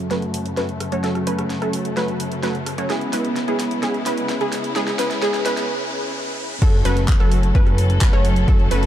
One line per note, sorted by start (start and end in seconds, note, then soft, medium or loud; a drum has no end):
0.00 2.86 F#2 medium
0.00 6.58 C#3 medium
0.00 2.86 A3 medium
0.00 riser medium
0.11 0.54 F#3 medium
0.11 0.54 A3 medium
0.11 0.54 C#4 medium
0.11 0.54 F#4 medium
0.11 0.54 B4 loud
0.11 snare soft
0.11 closed hi-hat medium
0.22 closed hi-hat soft
0.34 open hi-hat loud
0.46 closed hi-hat soft
0.57 0.69 F#3 medium
0.57 0.69 A3 medium
0.57 0.69 C#4 medium
0.57 0.69 F#4 medium
0.57 0.69 B4 loud
0.57 snare medium
0.57 closed hi-hat medium
0.69 closed hi-hat soft
0.80 cross-stick medium
0.80 open hi-hat medium
0.92 1.01 F#3 medium
0.92 1.01 A3 medium
0.92 1.01 C#4 medium
0.92 1.01 F#4 medium
0.92 1.01 C#5 medium
0.92 closed hi-hat medium
1.04 1.24 F#3 medium
1.04 1.24 A3 medium
1.04 1.24 C#4 medium
1.04 1.24 F#4 medium
1.04 1.24 A4 loud
1.04 snare medium
1.04 closed hi-hat soft
1.15 cross-stick medium
1.15 closed hi-hat soft
1.27 1.59 F#3 medium
1.27 1.59 A3 medium
1.27 1.59 C#4 medium
1.27 1.59 F#4 medium
1.27 1.59 B4 medium
1.27 open hi-hat loud
1.39 cross-stick medium
1.39 closed hi-hat medium
1.50 snare medium
1.50 closed hi-hat medium
1.62 1.94 F#3 medium
1.62 1.94 A3 medium
1.62 1.94 C#4 medium
1.62 1.94 F#4 medium
1.62 1.94 A4 medium
1.62 1.94 A4 loud
1.62 closed hi-hat soft
1.73 open hi-hat medium
1.85 closed hi-hat medium
1.97 2.40 F#3 medium
1.97 2.40 A3 medium
1.97 2.40 C#4 medium
1.97 2.40 F#4 medium
1.97 2.40 B4 loud
1.97 snare medium
1.97 closed hi-hat medium
2.08 closed hi-hat soft
2.20 open hi-hat loud
2.32 closed hi-hat medium
2.43 2.55 F#3 medium
2.43 2.55 A3 medium
2.43 2.55 C#4 medium
2.43 2.55 F#4 medium
2.43 2.55 B4 loud
2.43 2.55 B4 medium
2.43 snare medium
2.43 closed hi-hat medium
2.55 closed hi-hat soft
2.66 cross-stick medium
2.66 open hi-hat medium
2.78 2.87 F#3 medium
2.78 2.87 A3 medium
2.78 2.87 C#4 medium
2.78 2.87 F#4 medium
2.78 2.87 C#5 loud
2.78 2.87 C#5 medium
2.78 closed hi-hat medium
2.90 3.10 G#3 medium
2.90 3.10 B3 medium
2.90 4.74 B3 medium
2.90 3.10 C#4 medium
2.90 3.10 E4 medium
2.90 6.58 E4 medium
2.90 3.10 G#4 medium
2.90 snare medium
2.90 closed hi-hat medium
3.01 closed hi-hat soft
3.13 3.45 G#3 medium
3.13 3.45 B3 medium
3.13 3.45 C#4 medium
3.13 3.45 E4 medium
3.13 3.45 B4 medium
3.13 snare medium
3.13 open hi-hat loud
3.25 closed hi-hat soft
3.36 snare medium
3.36 closed hi-hat soft
3.48 3.80 G#3 medium
3.48 3.80 B3 medium
3.48 3.80 C#4 medium
3.48 3.80 E4 medium
3.48 3.80 G#4 medium
3.48 closed hi-hat soft
3.59 snare medium
3.59 open hi-hat loud
3.71 closed hi-hat medium
3.83 4.03 G#3 medium
3.83 4.03 B3 medium
3.83 4.03 C#4 medium
3.83 4.03 E4 medium
3.83 4.03 G#4 medium
3.83 snare medium
3.83 closed hi-hat medium
3.94 closed hi-hat soft
4.06 4.38 G#3 medium
4.06 4.38 B3 medium
4.06 4.38 C#4 medium
4.06 4.38 E4 medium
4.06 4.38 B4 medium
4.06 snare medium
4.06 open hi-hat loud
4.18 closed hi-hat medium
4.29 snare medium
4.29 closed hi-hat medium
4.41 4.73 G#3 medium
4.41 4.73 B3 medium
4.41 4.73 C#4 medium
4.41 4.73 E4 medium
4.41 4.73 G#4 medium
4.41 closed hi-hat soft
4.52 snare medium
4.52 open hi-hat loud
4.64 closed hi-hat medium
4.76 4.96 G#3 medium
4.76 4.96 B3 medium
4.76 4.96 C#4 medium
4.76 6.60 C#4 medium
4.76 4.96 E4 medium
4.76 4.96 G#4 medium
4.76 4.96 G#4 loud
4.76 snare medium
4.76 closed hi-hat soft
4.87 snare medium
4.87 closed hi-hat soft
4.99 5.20 G#3 medium
4.99 5.20 B3 medium
4.99 5.20 C#4 medium
4.99 5.20 E4 medium
4.99 5.20 B4 medium
4.99 snare loud
4.99 open hi-hat loud
5.11 snare medium
5.11 closed hi-hat soft
5.22 5.43 G#3 medium
5.22 5.43 B3 medium
5.22 5.43 C#4 medium
5.22 5.43 E4 medium
5.22 5.43 G#4 loud
5.22 snare loud
5.22 closed hi-hat soft
5.34 snare medium
5.34 closed hi-hat soft
5.46 5.67 G#3 medium
5.46 5.67 B3 medium
5.46 5.67 C#4 medium
5.46 5.67 E4 medium
5.46 5.67 B4 loud
5.46 snare loud
5.46 open hi-hat loud
5.57 snare medium
5.57 closed hi-hat medium
6.62 6.83 F#1 loud
6.62 6.82 F#3 medium
6.62 8.86 F#3 medium
6.62 6.82 A3 medium
6.62 6.82 C#4 medium
6.62 8.86 C#4 medium
6.62 6.82 F#4 medium
6.62 6.82 A4 loud
6.62 8.86 A4 loud
6.62 kick loud
6.62 closed hi-hat medium
6.62 crash loud
6.74 closed hi-hat soft
6.85 7.18 F#1 loud
6.85 7.17 F#3 medium
6.85 7.17 A3 medium
6.85 7.17 C#4 medium
6.85 7.17 F#4 medium
6.85 7.17 B4 loud
6.85 7.17 B4 medium
6.85 open hi-hat loud
6.97 closed hi-hat medium
7.08 kick loud
7.08 clap loud
7.08 closed hi-hat medium
7.20 7.53 F#1 medium
7.20 7.52 F#3 medium
7.20 7.52 A3 medium
7.20 7.52 C#4 medium
7.20 7.52 F#4 medium
7.20 7.52 A4 loud
7.20 closed hi-hat soft
7.32 open hi-hat medium
7.43 closed hi-hat medium
7.55 7.99 F#1 medium
7.55 7.99 F#3 medium
7.55 7.99 A3 medium
7.55 7.99 C#4 medium
7.55 7.99 F#4 medium
7.55 7.99 B4 loud
7.55 kick loud
7.55 cross-stick medium
7.55 closed hi-hat medium
7.67 cross-stick medium
7.67 closed hi-hat soft
7.78 open hi-hat loud
7.90 closed hi-hat medium
8.01 8.11 F#1 medium
8.01 8.10 F#3 medium
8.01 8.10 A3 medium
8.01 8.10 C#4 medium
8.01 8.10 F#4 medium
8.01 8.10 B4 loud
8.01 8.10 B4 medium
8.01 kick loud
8.01 clap loud
8.01 closed hi-hat medium
8.13 8.46 F#1 loud
8.13 8.45 F#3 loud
8.13 8.45 A3 medium
8.13 8.45 C#4 medium
8.13 8.45 F#4 medium
8.13 8.45 C#5 loud
8.13 cross-stick medium
8.13 closed hi-hat soft
8.25 open hi-hat medium
8.36 closed hi-hat medium
8.48 8.69 F#1 loud
8.48 8.68 F#3 medium
8.48 8.68 A3 medium
8.48 8.68 C#4 medium
8.48 8.68 F#4 medium
8.48 8.68 A4 loud
8.48 kick loud
8.48 closed hi-hat medium
8.60 closed hi-hat soft
8.71 8.86 F#1 loud
8.71 8.86 F#3 medium
8.71 8.86 A3 medium
8.71 8.86 C#4 medium
8.71 8.86 F#4 medium
8.71 8.86 B4 medium
8.71 8.86 B4 loud
8.71 open hi-hat loud
8.83 closed hi-hat medium